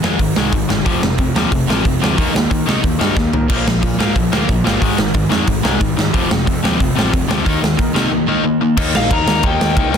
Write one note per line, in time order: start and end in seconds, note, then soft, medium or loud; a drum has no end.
0.03 0.16 F2 medium
0.03 0.19 G#2 medium
0.03 0.19 D#3 medium
0.03 0.20 G#3 loud
0.03 snare loud
0.19 0.31 G#1 medium
0.19 0.35 G#2 medium
0.19 0.35 D#3 medium
0.19 kick loud
0.19 open hi-hat medium
0.36 0.49 C2 medium
0.36 0.52 G#2 medium
0.36 0.53 D#3 loud
0.36 0.53 G#3 loud
0.36 snare loud
0.53 0.65 G#1 medium
0.53 0.68 G#2 medium
0.53 0.68 D#3 medium
0.53 kick loud
0.53 open hi-hat medium
0.69 0.82 G1 medium
0.69 0.84 G#2 medium
0.69 0.84 D#3 medium
0.69 snare loud
0.85 0.98 F1 medium
0.85 1.01 F2 medium
0.85 1.01 C3 loud
0.85 1.02 F3 loud
0.85 kick loud
0.85 open hi-hat medium
1.03 1.15 F1 medium
1.03 1.18 F2 medium
1.03 1.18 C3 medium
1.03 snare loud
1.18 1.31 F2 medium
1.18 1.34 F2 medium
1.18 1.35 C3 medium
1.18 kick loud
1.18 open hi-hat medium
1.35 1.48 D#2 medium
1.35 1.51 F2 medium
1.35 1.52 C3 loud
1.35 1.52 F3 medium
1.35 snare loud
1.52 1.64 F1 medium
1.52 1.67 F2 medium
1.52 1.67 C3 medium
1.52 kick loud
1.52 open hi-hat medium
1.68 1.81 A1 medium
1.68 1.84 F2 medium
1.68 1.83 C3 loud
1.68 1.85 F3 loud
1.68 snare loud
1.85 1.98 F1 medium
1.85 2.00 F2 medium
1.85 2.00 C3 medium
1.85 kick loud
1.85 open hi-hat medium
2.01 2.14 D2 medium
2.01 2.17 F2 medium
2.01 2.17 C3 loud
2.01 2.18 F3 medium
2.01 snare loud
2.18 2.30 D#2 medium
2.18 2.33 D#3 loud
2.18 2.34 A#3 medium
2.18 2.34 D#4 loud
2.18 kick loud
2.18 open hi-hat medium
2.34 2.46 D#2 medium
2.34 2.49 D#3 medium
2.34 2.50 A#3 medium
2.34 snare loud
2.50 2.65 D#3 medium
2.50 2.63 D#3 medium
2.50 2.65 A#3 medium
2.50 kick loud
2.50 open hi-hat medium
2.66 2.80 C3 medium
2.66 2.80 D#3 medium
2.66 2.81 A#3 medium
2.66 2.83 D#4 loud
2.66 snare loud
2.82 2.96 D#2 medium
2.82 2.98 D#3 medium
2.82 2.98 A#3 medium
2.82 kick loud
2.82 open hi-hat medium
2.99 3.13 G2 medium
2.99 3.15 D#3 medium
2.99 3.15 A#3 medium
2.99 3.16 D#4 medium
2.99 snare loud
3.16 3.29 D#2 medium
3.16 3.31 D#3 medium
3.16 3.32 A#3 medium
3.16 kick loud
3.16 snare medium
3.33 3.45 D#3 medium
3.33 3.48 D#3 medium
3.33 3.49 A#3 medium
3.33 floor tom medium
3.50 3.62 A#1 medium
3.50 3.64 A#2 medium
3.50 3.65 F3 loud
3.50 3.66 A#3 medium
3.50 kick loud
3.50 crash loud
3.65 3.79 A#1 medium
3.65 3.81 A#2 medium
3.65 3.81 F3 medium
3.65 snare loud
3.82 3.97 A#2 medium
3.82 3.95 A#2 medium
3.82 3.98 F3 medium
3.82 kick loud
3.82 open hi-hat medium
3.99 4.12 G#2 medium
3.99 4.15 A#2 medium
3.99 4.15 F3 medium
3.99 4.15 A#3 loud
3.99 snare loud
4.15 4.28 A#1 medium
4.15 4.31 A#2 medium
4.15 4.31 F3 medium
4.15 kick loud
4.15 open hi-hat medium
4.32 4.45 D2 medium
4.32 4.47 A#2 medium
4.32 4.47 F3 medium
4.32 4.48 A#3 loud
4.32 snare loud
4.48 4.61 A#1 medium
4.48 4.63 A#2 medium
4.48 4.64 F3 medium
4.48 kick loud
4.48 open hi-hat medium
4.64 4.77 G1 medium
4.64 4.80 A#2 medium
4.64 4.81 F3 loud
4.64 4.81 A#3 loud
4.64 snare loud
4.81 4.94 G#1 medium
4.81 4.97 G#2 medium
4.81 4.97 D#3 medium
4.81 4.98 G#3 loud
4.81 kick loud
4.81 open hi-hat medium
4.98 5.10 G#1 medium
4.98 5.13 G#2 medium
4.98 5.13 D#3 medium
4.98 snare loud
5.14 5.27 G#2 medium
5.14 5.28 G#2 medium
5.14 5.29 D#3 medium
5.14 kick loud
5.14 open hi-hat medium
5.29 5.43 F2 medium
5.29 5.46 G#2 medium
5.29 5.46 D#3 medium
5.29 5.47 G#3 loud
5.29 snare loud
5.47 5.60 G#1 medium
5.47 5.62 G#2 medium
5.47 5.63 D#3 medium
5.47 kick loud
5.47 open hi-hat medium
5.63 5.77 C2 medium
5.63 5.79 G#2 loud
5.63 5.79 D#3 loud
5.63 5.80 G#3 loud
5.63 snare loud
5.80 5.93 G#1 medium
5.80 5.96 G#2 medium
5.80 5.96 D#3 medium
5.80 kick loud
5.80 open hi-hat medium
5.97 6.09 G#2 medium
5.97 6.12 G#2 medium
5.97 6.12 D#3 medium
5.97 snare loud
6.13 6.26 F1 medium
6.13 6.29 F2 medium
6.13 6.29 C3 medium
6.13 6.30 F3 loud
6.13 kick loud
6.13 open hi-hat medium
6.30 6.43 F1 medium
6.30 6.45 F2 medium
6.30 6.46 C3 medium
6.30 snare loud
6.46 6.61 F2 medium
6.46 6.59 F2 medium
6.46 6.62 C3 medium
6.46 kick loud
6.46 open hi-hat medium
6.63 6.76 D#2 medium
6.63 6.79 F2 medium
6.63 6.79 C3 medium
6.63 6.79 F3 loud
6.63 snare loud
6.80 6.92 F1 medium
6.80 6.94 F2 medium
6.80 6.95 C3 medium
6.80 kick loud
6.80 open hi-hat medium
6.96 7.09 A1 medium
6.96 7.11 F2 medium
6.96 7.12 C3 loud
6.96 7.12 F3 loud
6.96 snare loud
7.12 7.25 F1 medium
7.12 7.27 F2 medium
7.12 7.28 C3 medium
7.12 kick loud
7.12 open hi-hat medium
7.28 7.43 D2 medium
7.28 7.44 F2 medium
7.28 7.45 C3 loud
7.28 7.45 F3 loud
7.28 snare loud
7.46 7.58 D#2 medium
7.46 7.61 D#3 medium
7.46 7.62 A#3 medium
7.46 7.62 D#4 loud
7.46 kick loud
7.46 open hi-hat medium
7.63 7.75 D#2 medium
7.63 7.76 D#3 medium
7.63 7.77 A#3 medium
7.63 snare loud
7.77 7.93 D#3 medium
7.77 7.91 D#3 medium
7.77 7.93 A#3 medium
7.77 kick loud
7.77 open hi-hat medium
7.94 8.07 C3 medium
7.94 8.10 D#3 medium
7.94 8.10 A#3 medium
7.94 8.11 D#4 loud
7.94 snare loud
8.11 8.26 D#3 medium
8.11 8.27 A#3 medium
8.28 8.43 D#3 medium
8.28 8.43 A#3 loud
8.28 8.44 D#4 loud
8.44 8.59 D#3 medium
8.44 8.60 A#3 medium
8.61 8.76 D#3 medium
8.61 8.76 A#3 medium
8.77 8.93 D#2 loud
8.77 9.10 D#3 medium
8.77 9.10 A#3 loud
8.77 9.11 D#4 loud
8.77 kick loud
8.77 crash loud
8.95 9.10 A#1 loud
8.95 9.12 F5 loud
8.95 snare loud
9.10 9.27 D#2 medium
9.10 9.28 D#3 medium
9.10 9.28 A#3 medium
9.10 9.26 D#4 loud
9.10 9.44 A#5 loud
9.10 kick loud
9.10 ride medium
9.28 9.43 D#2 medium
9.28 9.42 D#3 medium
9.28 9.43 A#3 medium
9.28 9.43 D#4 loud
9.28 snare loud
9.43 9.60 D#2 medium
9.43 9.75 D#3 medium
9.43 9.76 A#3 loud
9.43 9.76 D#4 loud
9.43 9.97 G5 loud
9.43 kick loud
9.43 ride medium
9.61 9.76 D#2 medium
9.61 snare loud
9.76 9.93 C2 medium
9.76 9.92 D#3 medium
9.76 9.92 A#3 medium
9.76 9.91 D#4 loud
9.76 kick loud
9.76 ride medium
9.92 9.97 D#2 loud
9.92 9.97 D#3 medium
9.92 9.97 A#3 medium
9.92 9.97 D#4 loud
9.92 snare loud